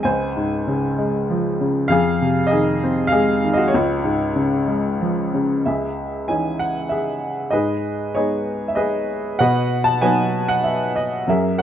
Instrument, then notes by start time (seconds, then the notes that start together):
upright piano
0.03 C#2 C5 G#5
0.36 G#2
0.67 C#3
0.99 G#3
1.30 F3
1.61 C#3
1.88 F2 G#4 F5
2.22 C3
2.47 D#5
2.51 D#3 G#4
2.83 C4
3.07 F5
3.12 G#3 G#4
3.44 D#3
3.54 F#4 D#5
3.68 C#5
3.73 C#2 F4
4.04 G#2
4.36 C#3
4.68 G#3
5.01 F3
5.34 C#3
5.66 C#2 G#4 E5
6.28 E3 C#4 D#4 G#5
6.59 F#5
6.89 G#4 E5
7.51 G#2 G#4 B4 D#5
8.15 G#3 B3 D#4 G#4 C#5
8.68 E5
8.75 G#4 B4 D#5
9.39 B2 B4 D#5 F#5
9.84 A5
10.02 F#3 B3 D#4 B4 D#5 G#5
10.48 F#5
10.64 E5
10.96 D#5
11.27 F#2 G#4 A#4 E5
11.58 A#4 C#5 F#5